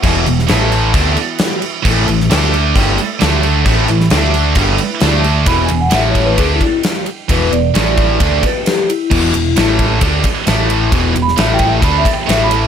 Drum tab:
CC |x-x-x-x-x-x-x-x-|x-x-x-x-x-x-x-x-|x-x-x-x-x-x-x-x-|----------------|
RD |----------------|----------------|----------------|x-x-x-x-x-x-x-x-|
SD |---oo-------o---|---oo-------o---|---oo-------o---|----o-------o---|
BD |o-------o-------|o-------o-------|o-------o-------|o-----o-o-o-----|

CC |----------------|x---------------|----------------|
RD |x-x-x-x-x-x-x-x-|--x-x-x-x-x-x-x-|x-x-x-x-x-x-x-x-|
SD |----o-------o---|----o-------o---|---oo-------o---|
BD |o-----o-o-o-----|o-----o-o-o-----|o-----o-o-o-----|